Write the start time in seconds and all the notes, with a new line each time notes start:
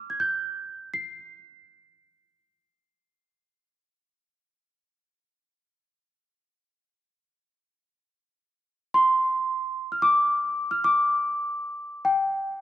Already playing: F6
0.10 G#6
0.20 G6
0.94 C7
8.94 C6
9.92 F6
10.02 D6
10.71 F6
10.84 D6
12.05 G5